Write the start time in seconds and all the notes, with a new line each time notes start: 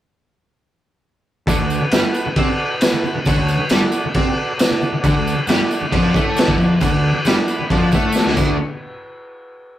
1.47 D2 D3 F#4 A4 D5, kick, tambourine, crash
1.59 D2 D3
1.70 tambourine
1.81 muted distorted electric guitar stroke, muted picked electric bass stroke
1.90 G2 G3 F#4 A4 B4, snare, tambourine, crash
2.03 muted picked electric bass stroke, muted distorted electric guitar stroke
2.14 tambourine
2.26 muted picked electric bass stroke, muted distorted electric guitar stroke
2.36 C3 C4 F#4 A4 D5, kick, crash
2.81 F#4 A4 B4, snare, tambourine, crash
2.92 muted picked electric bass stroke, muted distorted electric guitar stroke
3.03 muted picked electric bass stroke, muted distorted electric guitar stroke, tambourine
3.15 muted picked electric bass stroke, muted distorted electric guitar stroke
3.25 D2 D3 F#4 A4 C#5, kick, tambourine, crash
3.37 D2 D3
3.48 tambourine
3.59 muted distorted electric guitar stroke, muted picked electric bass stroke
3.69 G2 G3 F#4 A4 D5, snare, tambourine, crash
3.82 muted picked electric bass stroke, muted distorted electric guitar stroke
3.92 tambourine
4.05 muted picked electric bass stroke, muted distorted electric guitar stroke
4.14 C3 C4 F#4 A4 D5, kick, crash
4.58 F#4 A4 D5, snare, tambourine, crash
4.71 muted distorted electric guitar stroke, muted picked electric bass stroke
4.81 muted picked electric bass stroke, muted distorted electric guitar stroke, tambourine
4.92 muted picked electric bass stroke, muted distorted electric guitar stroke
5.01 D2 D3 F#4 A4 D5, kick, tambourine, crash
5.14 D2 D3
5.27 tambourine
5.36 muted picked electric bass stroke, muted distorted electric guitar stroke
5.47 G2 G3 F#4 A4 D5, snare, tambourine, crash
5.59 muted picked electric bass stroke, muted distorted electric guitar stroke
5.71 tambourine
5.81 muted picked electric bass stroke, muted distorted electric guitar stroke
5.91 F2 F3 F#4 A4 D5, kick, crash
6.14 A2 A3, kick, tambourine
6.35 F#4 A4 D5, snare, tambourine, crash
6.48 D2 D3, kick
6.57 F2 F3, tambourine
6.81 D2 D3 F#4 A4, kick, tambourine, crash
6.85 D5
6.92 D2 D3
7.14 muted picked electric bass stroke, muted distorted electric guitar stroke
7.25 G2 G3 F#4 D5, snare, tambourine, crash
7.29 A4
7.38 muted picked electric bass stroke, muted distorted electric guitar stroke
7.48 B5, tambourine
7.59 muted picked electric bass stroke, muted distorted electric guitar stroke
7.70 F2 F3 F#4 A4 D5 A5, kick, tambourine, crash
7.92 A2 A3 F#5, kick, tambourine
8.12 D5, snare, tambourine
8.17 F#4 A4
8.26 D2 D3, snare
8.36 D2 D3 A3 D4 F#4 A4 D5, kick, crash, tambourine